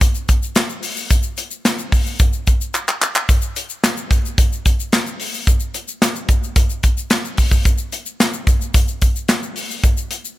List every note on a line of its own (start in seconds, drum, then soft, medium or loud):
0.01 kick loud
0.01 closed hi-hat medium
0.01 shaker medium
0.15 shaker soft
0.29 kick loud
0.29 closed hi-hat medium
0.29 shaker medium
0.43 shaker soft
0.56 snare loud
0.56 clap loud
0.56 closed hi-hat loud
0.56 shaker medium
0.69 shaker soft
0.83 open hi-hat medium
0.83 shaker medium
0.96 shaker medium
1.10 kick loud
1.10 closed hi-hat medium
1.10 shaker medium
1.23 shaker medium
1.37 closed hi-hat medium
1.37 shaker medium
1.51 shaker medium
1.65 snare loud
1.65 clap medium
1.65 closed hi-hat loud
1.65 shaker medium
1.79 shaker medium
1.92 kick loud
1.92 open hi-hat medium
1.92 shaker medium
2.06 shaker soft
2.19 kick loud
2.19 closed hi-hat medium
2.19 shaker medium
2.33 shaker soft
2.47 kick medium
2.47 closed hi-hat medium
2.47 shaker medium
2.61 shaker medium
2.74 clap medium
2.74 shaker medium
2.88 clap medium
2.88 shaker soft
3.02 clap medium
3.02 shaker medium
3.15 clap loud
3.15 shaker medium
3.29 kick loud
3.29 closed hi-hat medium
3.29 shaker medium
3.42 shaker medium
3.56 closed hi-hat medium
3.56 shaker medium
3.70 shaker medium
3.84 snare loud
3.84 clap loud
3.84 closed hi-hat loud
3.84 shaker medium
3.97 shaker medium
4.11 kick loud
4.11 closed hi-hat medium
4.11 shaker medium
4.25 shaker soft
4.38 kick loud
4.38 closed hi-hat medium
4.38 shaker medium
4.52 shaker medium
4.66 kick medium
4.66 closed hi-hat medium
4.66 shaker medium
4.80 shaker medium
4.92 snare loud
4.92 clap medium
4.92 closed hi-hat medium
4.92 shaker medium
5.07 shaker soft
5.20 open hi-hat medium
5.20 shaker medium
5.34 shaker medium
5.47 kick loud
5.47 closed hi-hat medium
5.47 shaker medium
5.60 shaker medium
5.74 closed hi-hat medium
5.74 shaker medium
5.88 shaker medium
6.02 snare loud
6.02 clap medium
6.02 closed hi-hat loud
6.02 shaker medium
6.16 shaker medium
6.29 kick loud
6.29 closed hi-hat medium
6.29 shaker medium
6.43 shaker soft
6.56 kick loud
6.56 closed hi-hat loud
6.56 shaker medium
6.70 shaker soft
6.83 kick medium
6.83 closed hi-hat medium
6.83 shaker medium
6.97 shaker medium
7.10 snare loud
7.10 clap medium
7.10 closed hi-hat loud
7.10 shaker medium
7.25 shaker soft
7.37 kick medium
7.37 open hi-hat medium
7.37 shaker medium
7.51 kick loud
7.51 shaker medium
7.65 kick loud
7.65 closed hi-hat medium
7.65 shaker medium
7.78 shaker medium
7.92 closed hi-hat medium
7.92 shaker medium
8.06 shaker medium
8.20 snare loud
8.20 clap medium
8.20 closed hi-hat loud
8.20 shaker medium
8.33 shaker medium
8.47 kick loud
8.47 closed hi-hat medium
8.47 shaker medium
8.61 shaker soft
8.74 kick loud
8.74 closed hi-hat loud
8.74 shaker medium
8.88 shaker soft
9.02 kick medium
9.02 closed hi-hat medium
9.02 shaker medium
9.16 shaker medium
9.28 snare loud
9.28 clap medium
9.28 closed hi-hat medium
9.28 shaker medium
9.43 shaker medium
9.56 open hi-hat medium
9.56 shaker medium
9.71 shaker medium
9.84 kick loud
9.84 closed hi-hat medium
9.84 shaker medium
9.97 shaker medium
10.11 closed hi-hat medium
10.11 shaker medium
10.25 shaker medium